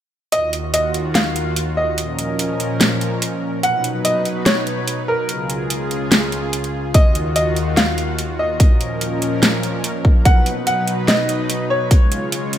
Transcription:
0.32 D#2 D#3 F4 F#4 D#5, closed hi-hat
0.53 closed hi-hat
0.74 D#5, closed hi-hat
0.94 closed hi-hat
1.15 F5, snare, closed hi-hat
1.36 closed hi-hat
1.56 closed hi-hat
1.77 D#5
1.98 A#2 F3 C#4 A#4, closed hi-hat
2.19 closed hi-hat
2.39 closed hi-hat
2.60 closed hi-hat
2.81 snare, closed hi-hat
3.01 closed hi-hat
3.22 closed hi-hat
3.63 B2 F#3 D#4 B4 F#5, closed hi-hat
3.84 closed hi-hat
4.05 D#5, closed hi-hat
4.25 closed hi-hat
4.46 C#5, snare, closed hi-hat
4.67 closed hi-hat
4.87 closed hi-hat
5.08 A#4
5.29 C#2 C#3 F4 G#4, closed hi-hat
5.50 closed hi-hat
5.70 closed hi-hat
5.91 closed hi-hat
6.12 snare, closed hi-hat
6.32 closed hi-hat
6.53 closed hi-hat
6.64 closed hi-hat
6.94 D#2 D#3 F4 F#4 D#5, kick, closed hi-hat
7.15 closed hi-hat
7.36 D#5, closed hi-hat
7.56 closed hi-hat
7.77 F5, snare, closed hi-hat
7.98 closed hi-hat
8.19 closed hi-hat
8.39 D#5
8.60 A#2 F3 C#4 A#4, kick, closed hi-hat
8.81 closed hi-hat
9.01 closed hi-hat
9.22 closed hi-hat
9.43 snare, closed hi-hat
9.63 closed hi-hat
9.84 closed hi-hat
10.05 kick
10.25 B2 F#3 D#4 B4 F#5, kick, closed hi-hat
10.46 closed hi-hat
10.67 F#5, closed hi-hat
10.87 closed hi-hat
11.08 D#5, snare, closed hi-hat
11.29 closed hi-hat
11.50 closed hi-hat
11.70 C#5
11.91 C#3 G#3 F4 C#5, kick, closed hi-hat
12.12 closed hi-hat
12.32 closed hi-hat
12.53 closed hi-hat

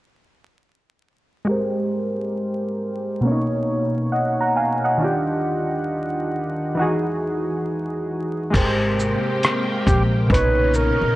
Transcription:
1.45 G#3 G4
1.49 A#4 C5
3.21 B2 A#3
3.25 C#4 C#5
3.32 D#4
4.12 D#5 F#5
4.41 F#5 A#5
4.56 F5 G#5
4.84 D#5 F#5
4.98 D#3 D4
5.02 F4 G4
6.75 E3 D#4
6.79 F#4 G#4
8.50 G#1 G#3 G4, kick, crash
8.55 C3 A#3 G4 A#4 C5, closed hi-hat
9.00 shaker
9.43 cross-stick, closed hi-hat
9.87 A#1 G4, kick, closed hi-hat, shaker
10.27 B1 A#2 B2 C#3 C#4 D#4, kick
10.31 D#4 B4 C#5, closed hi-hat
10.74 A#4, shaker
11.01 C#2

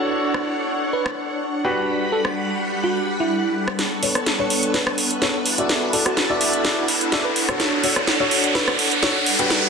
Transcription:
Already playing: D4 E4 F#4 A4 C#5 F#5
0.34 cross-stick
0.93 B4
1.06 cross-stick
1.64 G3 D4 F#4 G4 B4 F#5 B5
1.90 A4
2.12 A4
2.25 cross-stick
2.84 F#4
3.20 E4
3.68 cross-stick
3.79 B3 A4 B4 C#6, snare, closed hi-hat, riser
4.03 D4 A4 B4 C#5, open hi-hat
4.15 cross-stick, closed hi-hat
4.26 snare, closed hi-hat
4.39 D4 A4 B4 C#5
4.50 open hi-hat
4.63 closed hi-hat
4.74 D4 A4 B4 C#5, snare, closed hi-hat
4.87 cross-stick
4.98 open hi-hat
5.11 closed hi-hat
5.22 D4 A4 B4 C#5, snare, closed hi-hat
5.45 E4 F#5 A5, open hi-hat
5.58 E4 F#4 A4 D5, closed hi-hat
5.62 D4
5.69 snare, closed hi-hat
5.93 E4 F#4 A4 D5 F#5, open hi-hat
6.06 F#4, cross-stick, closed hi-hat
6.17 snare, closed hi-hat
6.30 E4 F#4 A4 D5
6.41 open hi-hat
6.53 closed hi-hat
6.65 E4 F#4 A4 D5, snare, closed hi-hat
6.88 open hi-hat
7.01 closed hi-hat
7.12 E4 F#4 A4 D5, snare, closed hi-hat
7.25 B4
7.36 D4 C#5, open hi-hat
7.49 D4 F#4 A4 C#5, cross-stick
7.60 snare, closed hi-hat
7.84 D4 F#4 A4 C#5, open hi-hat
7.96 cross-stick
8.07 snare, closed hi-hat
8.20 D4 F#4 A4 C#5
8.31 open hi-hat
8.44 closed hi-hat
8.55 D4 F#4 A4 B4 C#5, snare, closed hi-hat
8.68 cross-stick
8.79 open hi-hat
8.91 closed hi-hat
9.03 D4 F#4 A4 C#5, snare, closed hi-hat
9.26 G3 B5, open hi-hat
9.39 D4 F#4 G4 B4, closed hi-hat
9.50 snare, closed hi-hat

